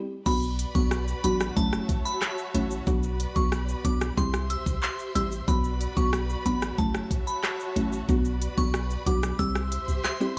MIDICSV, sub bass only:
0, 0, Header, 1, 2, 480
1, 0, Start_track
1, 0, Key_signature, 2, "minor"
1, 0, Tempo, 652174
1, 192, Time_signature, 4, 2, 24, 8
1, 7646, End_track
2, 0, Start_track
2, 0, Title_t, "Sub bass"
2, 0, Program_c, 0, 38
2, 193, Note_on_c, 0, 35, 113
2, 477, Note_off_c, 0, 35, 0
2, 553, Note_on_c, 0, 35, 95
2, 837, Note_off_c, 0, 35, 0
2, 912, Note_on_c, 0, 33, 92
2, 1102, Note_off_c, 0, 33, 0
2, 1154, Note_on_c, 0, 30, 108
2, 1343, Note_off_c, 0, 30, 0
2, 1873, Note_on_c, 0, 33, 93
2, 2062, Note_off_c, 0, 33, 0
2, 2113, Note_on_c, 0, 35, 113
2, 2397, Note_off_c, 0, 35, 0
2, 2473, Note_on_c, 0, 35, 91
2, 2757, Note_off_c, 0, 35, 0
2, 2831, Note_on_c, 0, 35, 96
2, 3021, Note_off_c, 0, 35, 0
2, 3074, Note_on_c, 0, 36, 103
2, 3358, Note_off_c, 0, 36, 0
2, 3433, Note_on_c, 0, 36, 90
2, 3527, Note_off_c, 0, 36, 0
2, 3792, Note_on_c, 0, 33, 97
2, 3982, Note_off_c, 0, 33, 0
2, 4033, Note_on_c, 0, 35, 112
2, 4317, Note_off_c, 0, 35, 0
2, 4393, Note_on_c, 0, 35, 91
2, 4677, Note_off_c, 0, 35, 0
2, 4752, Note_on_c, 0, 33, 92
2, 4942, Note_off_c, 0, 33, 0
2, 4993, Note_on_c, 0, 30, 111
2, 5183, Note_off_c, 0, 30, 0
2, 5712, Note_on_c, 0, 33, 91
2, 5902, Note_off_c, 0, 33, 0
2, 5953, Note_on_c, 0, 35, 112
2, 6237, Note_off_c, 0, 35, 0
2, 6312, Note_on_c, 0, 35, 90
2, 6597, Note_off_c, 0, 35, 0
2, 6671, Note_on_c, 0, 35, 94
2, 6861, Note_off_c, 0, 35, 0
2, 6914, Note_on_c, 0, 36, 107
2, 7198, Note_off_c, 0, 36, 0
2, 7272, Note_on_c, 0, 36, 92
2, 7367, Note_off_c, 0, 36, 0
2, 7646, End_track
0, 0, End_of_file